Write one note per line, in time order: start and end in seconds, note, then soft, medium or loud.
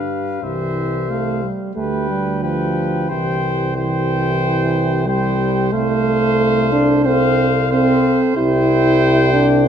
0.00 0.42 G2 medium
0.00 0.39 G4 medium
0.00 0.39 B4 soft
0.00 0.45 F5 soft
0.42 1.47 C2 medium
0.42 1.06 E3 medium
0.42 1.47 G4 medium
0.42 1.47 C5 medium
0.42 1.12 E5 medium
1.09 1.44 A3 medium
1.09 1.54 F5 soft
1.43 1.75 G3 medium
1.75 3.07 D2 medium
1.75 2.09 A3 medium
1.75 2.40 G4 medium
1.75 2.39 B4 medium
1.75 2.41 G5 medium
2.10 2.45 G3 medium
2.43 3.11 F3 medium
2.43 3.09 G4 medium
2.43 3.11 B4 soft
2.43 3.09 G5 medium
3.09 5.70 C2 medium
3.09 3.75 E3 medium
3.09 3.75 G4 medium
3.09 3.75 C5 medium
3.09 3.75 G5 medium
3.75 5.08 E3 medium
3.75 5.05 G4 medium
3.75 5.06 C5 medium
3.75 5.06 G5 medium
5.06 5.74 G3 medium
5.06 5.72 G4 medium
5.06 5.72 C5 medium
5.06 5.73 G5 medium
5.72 8.20 C2 medium
5.72 6.71 A3 medium
5.72 7.02 A4 medium
5.72 7.01 C5 medium
5.72 7.02 F5 medium
6.72 7.07 D4 loud
7.04 7.49 C4 medium
7.04 7.70 A4 medium
7.04 7.70 C5 medium
7.04 7.71 F5 medium
7.71 8.33 C4 loud
7.71 8.38 A4 medium
7.71 8.35 C5 medium
7.71 8.21 F5 medium
8.37 9.68 C2 medium
8.37 9.33 E4 loud
8.37 9.51 G4 medium
8.37 9.50 C5 medium
8.37 9.66 G5 medium
9.33 9.66 D4 loud